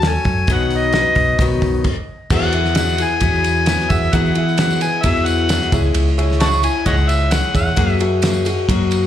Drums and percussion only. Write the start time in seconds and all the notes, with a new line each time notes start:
0.02 snare, open hi-hat
0.25 kick, open hi-hat
0.47 kick, open hi-hat
0.71 open hi-hat
0.93 snare, open hi-hat
1.15 kick, open hi-hat
1.39 kick, open hi-hat
1.62 kick, open hi-hat
1.84 kick, crash
2.30 kick, crash, tambourine
2.42 tambourine
2.53 ride
2.65 snare, tambourine
2.75 snare, ride, tambourine
2.89 tambourine
2.98 ride, tambourine
3.21 kick, ride, tambourine
3.34 tambourine
3.44 ride, tambourine
3.56 tambourine
3.66 snare, ride, tambourine
3.80 snare
3.90 kick, ride, tambourine
4.02 tambourine
4.13 kick, ride, tambourine
4.26 tambourine
4.35 ride
4.49 tambourine
4.58 snare, ride, tambourine
4.71 tambourine
4.81 ride, tambourine
5.04 kick, ride, tambourine
5.17 tambourine
5.26 ride, tambourine
5.39 tambourine
5.49 snare, ride, tambourine
5.62 snare
5.72 kick, ride, tambourine
5.84 tambourine
5.95 ride, tambourine
6.08 tambourine
6.19 ride
6.30 snare, tambourine
6.40 snare, ride, tambourine
6.51 tambourine
6.63 ride, tambourine
6.86 kick, ride, tambourine
6.97 tambourine
7.09 ride, tambourine
7.21 tambourine
7.31 snare, ride, tambourine
7.55 kick, ride, tambourine
7.67 tambourine
7.77 kick, ride, tambourine
7.88 tambourine
7.99 ride, tambourine
8.22 snare, ride, tambourine
8.33 tambourine
8.45 ride, tambourine
8.57 tambourine
8.68 kick, ride, tambourine
8.91 ride, tambourine
9.03 tambourine